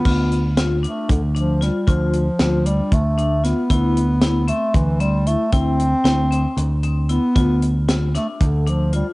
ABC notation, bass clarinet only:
X:1
M:7/8
L:1/8
Q:1/4=115
K:Ddor
V:1 name="Bass clarinet" clef=bass
B,2 z A, D, F, G, | F,2 F, G, A,2 B,- | B,3 A, E, G, A, | C4- C z B,- |
B,2 z A, D, F, G, |]